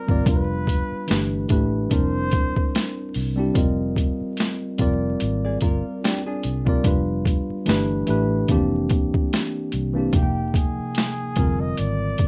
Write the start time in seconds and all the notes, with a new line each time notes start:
Already playing: G3 C4 F4 A#4 D5
0.07 G#1 G3 C4 F4 A#4, kick
0.11 D5
0.26 F1 G3 B3 D4 F4 A#4 B4, kick, closed hi-hat
0.36 B4
0.67 kick, closed hi-hat
0.92 muted fingered electric bass stroke
1.08 G1 E3 A3 D4 G4 B4, snare, closed hi-hat
1.49 A1 E3 A3 D4 G4 B4, kick, closed hi-hat
1.89 F1 G3 C4 D4 E4 A#4 C5, kick, closed hi-hat
2.31 E1, kick, closed hi-hat
2.56 kick
2.75 snare, closed hi-hat
3.14 C2, open hi-hat
3.36 G3 C4 D4 E4 G4
3.54 F1 G3 C4 F4 A#4 D#5, kick, closed hi-hat
3.96 kick, closed hi-hat
4.21 muted fingered electric bass stroke
4.37 snare, closed hi-hat
4.78 F1 G3 C4 F4 A#4 D5, kick, closed hi-hat
5.20 G#1, closed hi-hat
5.45 G#4 D5
5.61 G1 F4 A#4, kick, closed hi-hat
6.04 D4 G4, snare, closed hi-hat
6.27 D4 G#4
6.43 C2, closed hi-hat
6.65 G3 C4 F4 A#4 D5, kick
6.83 F1 G3 B3 D4 F4 B4, kick, closed hi-hat
7.25 kick, closed hi-hat
7.50 muted fingered electric bass stroke
7.66 G1 E3 A3 D4 G4 B4, snare, closed hi-hat
8.07 A1 E3 A3 D4 G4 B4, closed hi-hat
8.48 F1 D#3 A#3 C4 D4 G4, kick, closed hi-hat
8.55 E3
8.89 E1, kick, closed hi-hat
9.14 kick
9.33 snare, closed hi-hat
9.72 C2, closed hi-hat
9.94 E3 A#3 C4 D4
9.98 G4
10.12 F1 C3 F3 A#3 D#4 F#4 G4, kick, closed hi-hat
10.23 G5
10.54 G#4, kick, closed hi-hat
10.79 muted fingered electric bass stroke
10.95 snare, closed hi-hat
11.35 F1 C3 G3 C4 F4 A#4, kick, closed hi-hat
11.42 D3
11.61 D#5
11.77 G#1 D5, closed hi-hat
12.18 G1, kick, closed hi-hat